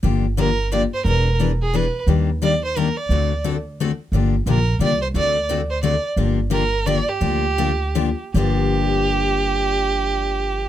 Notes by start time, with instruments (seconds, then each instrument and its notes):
0.03 upright bass G1, steel-string acoustic guitar D3 F3 A#3 D4 G4
0.37 steel-string acoustic guitar D3 F3 A#3 D4 G4, violin A#4
0.72 steel-string acoustic guitar D3 F3 A#3 D4 G4, violin D5
0.94 violin C5
1.05 upright bass E1, steel-string acoustic guitar E3 B3 D4 G#4, violin A#4
1.40 steel-string acoustic guitar E3 B3 D4 G#4
1.62 violin G#4
1.74 steel-string acoustic guitar E3 B3 D4 G#4, violin B4
2.07 upright bass D#2, steel-string acoustic guitar D#3 G3 A#3 D4 G4
2.42 steel-string acoustic guitar D#3 G3 A#3 D4 G4, violin D5
2.65 violin C5
2.76 steel-string acoustic guitar D#3 G3 A#3 D4 G4, violin A#4
2.97 violin D5
3.09 upright bass D2, steel-string acoustic guitar D3 A3 C4 F#4 A4
3.44 steel-string acoustic guitar D3 A3 C4 F#4 A4
3.80 steel-string acoustic guitar D3 A3 C4 F#4 A4
4.12 upright bass G1, steel-string acoustic guitar D3 F3 A#3 D4 G4
4.46 upright bass A#1, steel-string acoustic guitar D3 F3 A#3 D4 G4, violin A#4
4.79 upright bass C2, steel-string acoustic guitar D3 F3 A#3 D4 G4, violin D5
5.02 violin C5
5.14 upright bass D2, steel-string acoustic guitar D3 A3 C4 F#4 A4, violin D5
5.49 steel-string acoustic guitar D3 A3 C4 F#4 A4
5.70 violin C5
5.83 steel-string acoustic guitar D3 A3 C4 F#4 A4, violin D5
6.16 upright bass G1, steel-string acoustic guitar D3 F3 A#3 D4 G4
6.50 steel-string acoustic guitar D3 F3 A#3 D4 G4, violin A#4
6.86 steel-string acoustic guitar D3 F3 A#3 D4 G4, violin D5
7.08 violin G4
7.21 upright bass D2, steel-string acoustic guitar D3 F3 A#3 D4 G4
7.58 steel-string acoustic guitar D3 F3 A#3 D4 G4
7.95 steel-string acoustic guitar D3 F3 A#3 D4 G4
8.34 upright bass G1, steel-string acoustic guitar G2 D3 F3 A#3 D4 G4, violin G4